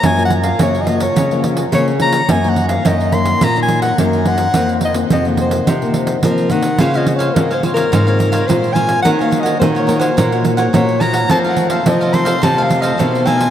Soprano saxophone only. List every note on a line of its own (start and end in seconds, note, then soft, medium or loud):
0.06 0.23 G#5 loud
0.25 0.33 F#5 medium
0.44 0.60 F5 medium
0.63 0.83 C#5 medium
0.82 0.99 D#5 medium
1.03 1.43 C#5 medium
1.75 1.87 C#5 medium
2.02 2.33 A#5 medium
2.32 2.51 G#5 medium
2.50 2.67 F#5 medium
2.69 2.89 F5 medium
2.87 3.16 D#5 medium
3.14 3.45 C6 medium
3.44 3.62 A#5 loud
3.63 3.79 G#5 medium
3.82 3.98 F#5 medium
4.01 4.29 A#4 medium
4.28 4.74 F#5 loud
4.85 4.97 D#5 medium
5.13 5.25 D#5 medium
5.42 5.94 C5 medium
6.25 6.53 A#4 medium
6.52 6.81 F#5 medium
6.80 6.98 F5 medium
6.97 7.15 D#5 medium
7.16 7.36 C#5 medium
7.34 7.53 A#4 medium
7.54 7.63 C5 medium
7.74 8.49 A#4 medium
8.47 8.75 C5 medium
8.74 9.02 G#5 loud
9.02 9.12 F#5 loud
9.22 9.42 F5 medium
9.41 9.59 D#5 medium
9.60 9.69 C5 medium
9.79 9.97 C#5 medium
10.01 10.43 C5 medium
10.74 11.03 C#5 medium
11.01 11.30 A#5 medium
11.31 11.39 A5 loud
11.49 11.70 F#5 medium
11.69 11.89 F5 medium
11.88 12.16 D#5 medium
12.14 12.43 C6 medium
12.44 12.65 A5 loud
12.63 12.83 F5 loud
12.82 13.01 D#5 medium
13.00 13.28 C5 medium
13.27 13.50 G#5 loud